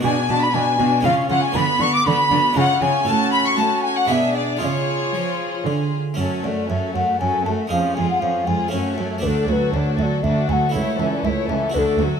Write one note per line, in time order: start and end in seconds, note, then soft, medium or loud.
0.00 0.27 B2 soft
0.00 0.99 G#3 soft
0.00 1.00 D4 soft
0.00 0.28 D4 medium
0.00 1.01 F#4 soft
0.00 0.28 F#4 soft
0.04 0.12 B2 medium
0.04 0.10 G#5 medium
0.04 0.28 G#5 medium
0.29 0.37 B2 medium
0.29 0.52 B2 soft
0.29 0.53 D4 medium
0.29 0.53 F#4 soft
0.29 0.45 A5 medium
0.29 0.42 A5 medium
0.43 0.55 B5 medium
0.43 0.56 B5 medium
0.54 0.62 B2 medium
0.54 0.77 B2 soft
0.54 0.78 D4 soft
0.54 0.78 F#4 soft
0.54 1.07 G#5 medium
0.54 1.05 G#5 medium
0.79 0.87 B2 medium
0.79 1.02 B2 medium
0.79 1.04 D4 medium
0.79 1.04 F#4 soft
1.00 1.12 C#3 medium
1.00 1.52 G#3 soft
1.00 1.53 C#4 soft
1.00 1.53 F4 soft
1.00 1.28 F4 soft
1.04 1.28 C#3 soft
1.04 1.29 C#4 soft
1.04 1.12 F5 medium
1.04 1.30 F5 medium
1.29 1.53 C#3 soft
1.29 1.38 C#3 medium
1.29 1.55 C#4 soft
1.29 1.55 F4 soft
1.29 1.43 F#5 medium
1.43 1.57 G#5 medium
1.43 1.56 G#5 medium
1.52 1.63 D3 medium
1.52 1.78 D3 soft
1.52 2.52 B3 soft
1.52 1.80 B3 medium
1.52 2.53 F#4 soft
1.52 1.79 F#4 medium
1.52 1.83 B5 medium
1.57 1.81 B5 medium
1.80 1.88 D3 medium
1.80 2.04 D3 soft
1.80 2.05 B3 soft
1.80 2.04 F#4 soft
1.80 1.96 C#6 medium
1.80 1.94 C#6 medium
1.94 2.06 D6 medium
1.94 2.08 D6 medium
2.05 2.14 D3 medium
2.05 2.29 D3 medium
2.05 2.31 B3 soft
2.05 2.29 F#4 medium
2.05 2.56 B5 medium
2.05 2.58 B5 medium
2.31 2.54 D3 soft
2.31 2.39 D3 medium
2.31 2.57 B3 soft
2.31 2.56 F#4 soft
2.52 3.04 G#3 soft
2.52 3.04 C#4 soft
2.52 3.05 F4 soft
2.52 2.80 F4 soft
2.57 2.65 C#3 medium
2.57 2.80 C#3 soft
2.57 2.81 C#4 soft
2.57 2.82 F#5 medium
2.57 2.62 G#5 medium
2.61 2.84 F#5 medium
2.81 2.90 C#3 medium
2.81 3.05 C#3 soft
2.81 3.06 C#4 soft
2.81 3.07 F4 soft
2.81 3.06 G#5 medium
2.81 3.07 G#5 medium
3.05 3.54 A2 medium
3.05 3.54 A2 soft
3.05 4.05 C#4 soft
3.05 3.54 C#4 medium
3.05 3.54 F#4 medium
3.05 4.06 A4 soft
3.05 3.32 A5 medium
3.32 3.45 B5 medium
3.32 3.38 B5 medium
3.45 3.58 C#6 medium
3.45 3.57 C#6 medium
3.57 4.06 A3 medium
3.57 4.05 A3 medium
3.57 4.08 C#4 soft
3.57 4.08 F#4 medium
3.57 3.83 A5 medium
3.57 3.82 A5 medium
3.83 3.89 G#5 medium
3.83 3.96 G#5 medium
3.96 4.08 F#5 medium
3.96 4.09 F#5 medium
4.05 4.58 B2 medium
4.05 4.56 G#3 soft
4.05 4.59 D4 soft
4.05 4.59 G#4 soft
4.05 4.35 E5 medium
4.05 4.13 F#5 medium
4.09 4.58 B2 soft
4.09 4.60 D4 soft
4.09 4.37 E5 medium
4.35 4.61 D5 medium
4.35 4.61 D5 soft
4.57 5.61 G#3 soft
4.57 6.13 F4 soft
4.57 6.14 G#4 soft
4.57 5.95 G#4 medium
4.61 5.10 C#3 soft
4.61 5.11 C#3 medium
4.61 5.98 F4 medium
4.61 5.66 C#5 medium
4.61 4.66 E5 medium
4.65 5.64 C#5 medium
5.14 5.63 F3 medium
5.14 5.63 F3 soft
5.67 6.15 D3 medium
5.67 6.15 D3 soft
6.14 7.65 A3 soft
6.14 7.66 C#4 soft
6.14 7.67 F#4 soft
6.18 6.26 F#2 soft
6.18 6.42 F#2 soft
6.18 6.42 F#3 soft
6.18 6.42 C#4 soft
6.18 6.42 A4 soft
6.18 6.46 C#5 soft
6.43 6.52 F#2 soft
6.43 6.67 F#2 soft
6.43 6.69 A3 soft
6.43 6.70 A3 soft
6.43 6.69 F#4 soft
6.43 6.69 D5 medium
6.69 6.77 F#2 soft
6.69 6.93 F#2 soft
6.69 6.95 F#3 soft
6.69 6.95 C#4 soft
6.69 6.95 A4 soft
6.69 6.94 E5 medium
6.95 7.03 F#2 soft
6.95 7.18 F#2 soft
6.95 7.20 A3 soft
6.95 7.21 A3 soft
6.95 7.21 F#4 soft
6.95 7.20 F#5 medium
7.20 7.28 F#2 soft
7.20 7.44 F#2 soft
7.20 7.44 F#3 soft
7.20 7.44 C#4 soft
7.20 7.44 A4 soft
7.20 7.45 G#5 medium
7.45 7.54 F#2 soft
7.45 7.69 F#2 soft
7.45 7.71 A3 soft
7.45 7.71 F#4 soft
7.45 7.51 A5 medium
7.67 7.79 F2 medium
7.67 8.68 G#3 soft
7.67 8.68 C#4 soft
7.67 7.95 C#4 soft
7.67 7.95 F4 soft
7.67 8.69 G#4 soft
7.67 7.96 F5 medium
7.71 7.94 F2 soft
7.71 7.95 F3 soft
7.96 8.04 F2 soft
7.96 8.20 F2 soft
7.96 8.22 G#3 soft
7.96 8.22 F4 soft
7.96 8.22 G#4 soft
7.96 8.09 G#5 medium
8.10 8.21 F#5 medium
8.22 8.30 F2 soft
8.22 8.45 F2 soft
8.22 8.47 F3 soft
8.22 8.48 C#4 soft
8.22 8.47 F4 soft
8.22 8.48 F5 medium
8.47 8.55 F2 soft
8.47 8.70 F2 soft
8.47 8.73 G#3 soft
8.47 8.73 F4 soft
8.47 8.73 G#4 soft
8.47 8.71 G#5 medium
8.68 9.17 A3 soft
8.68 9.20 C#4 soft
8.68 9.20 F#4 soft
8.68 9.24 C#5 medium
8.72 8.81 F#2 soft
8.72 8.96 F#2 soft
8.72 8.96 A3 soft
8.72 8.97 C#4 soft
8.72 8.97 F#4 soft
8.98 9.21 F#2 soft
8.98 9.06 F#2 soft
8.98 9.23 F#3 soft
8.98 9.24 A3 soft
8.98 9.23 A4 soft
9.18 10.68 A3 soft
9.18 10.69 D4 soft
9.18 10.69 F#4 soft
9.23 9.46 D2 soft
9.23 9.32 D2 soft
9.23 9.47 A3 soft
9.23 9.47 D4 soft
9.23 9.47 F#4 soft
9.23 9.48 A4 medium
9.23 9.27 B4 medium
9.48 9.71 D2 soft
9.48 9.57 D2 soft
9.48 9.74 F#3 soft
9.48 9.74 F#4 soft
9.48 9.74 A4 soft
9.48 9.73 B4 medium
9.48 9.53 C#5 soft
9.74 9.96 D2 soft
9.74 9.82 D2 medium
9.74 9.99 A3 soft
9.74 9.99 D4 soft
9.74 9.99 F#4 soft
9.74 9.98 C#5 medium
9.98 10.21 D2 soft
9.98 10.07 D2 soft
9.98 10.24 F#3 soft
9.98 10.24 F#4 soft
9.98 10.24 A4 soft
9.98 10.04 E5 medium
10.03 10.25 D5 medium
10.23 10.32 D2 medium
10.23 10.47 D2 soft
10.23 10.47 A3 soft
10.23 10.47 D4 soft
10.23 10.47 F#4 soft
10.23 10.49 E5 medium
10.49 10.57 D2 soft
10.49 10.72 D2 soft
10.49 10.74 F#3 soft
10.49 10.74 F#4 soft
10.49 10.75 A4 soft
10.49 10.54 G#5 medium
10.53 10.73 F#5 medium
10.69 11.68 A3 soft
10.69 11.70 E4 soft
10.69 11.70 A4 soft
10.74 10.97 C#2 soft
10.74 10.83 C#2 medium
10.74 10.98 A3 soft
10.74 10.98 E4 soft
10.74 10.98 C#5 medium
10.74 10.98 C#5 soft
10.99 11.07 C#2 soft
10.99 11.22 C#2 soft
10.99 11.25 E3 soft
10.99 11.25 C#4 soft
10.99 11.24 A4 soft
10.99 11.11 E5 medium
11.13 11.26 D5 medium
11.24 11.33 C#2 medium
11.24 11.47 C#2 soft
11.24 11.50 A3 soft
11.24 11.50 E4 soft
11.24 11.50 C#5 soft
11.24 11.30 E5 medium
11.29 11.49 C#5 medium
11.49 11.72 C#2 soft
11.49 11.58 C#2 medium
11.49 11.75 E3 soft
11.49 11.74 C#4 soft
11.49 11.75 A4 soft
11.49 11.76 E5 medium
11.70 12.20 A3 soft
11.70 12.20 F#4 soft
11.70 12.20 A4 soft
11.74 11.97 D2 soft
11.74 11.82 D2 medium
11.74 11.98 A3 soft
11.74 11.98 D4 soft
11.74 11.98 F#4 soft
11.74 11.79 B4 medium
11.78 12.02 A4 medium
11.99 12.20 D2 soft
11.99 12.07 D2 medium
11.99 12.20 F#3 soft
11.99 12.20 F#4 soft
11.99 12.20 A4 soft